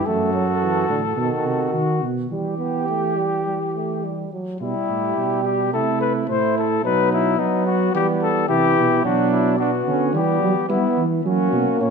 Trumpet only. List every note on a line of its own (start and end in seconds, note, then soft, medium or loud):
0.06 1.72 A4 medium
1.73 2.09 F#4 medium
2.30 4.28 G4 medium
4.61 5.41 E4 medium
5.44 5.72 G4 medium
5.73 6.00 A4 medium
6.01 6.13 B4 medium
6.30 6.56 C5 medium
6.58 6.84 A4 medium
6.85 7.11 B4 medium
7.12 7.41 E4 medium
7.39 7.66 D#4 medium
7.67 7.94 F#4 medium
7.95 8.07 G4 medium
8.23 8.48 A4 medium
8.49 9.03 G4 loud
9.05 9.30 F#4 medium
9.31 9.58 E4 medium
9.58 10.13 F#4 medium
10.15 10.68 G4 medium
10.69 11.04 E4 medium
11.26 11.77 F#4 medium
11.81 11.90 C#5 medium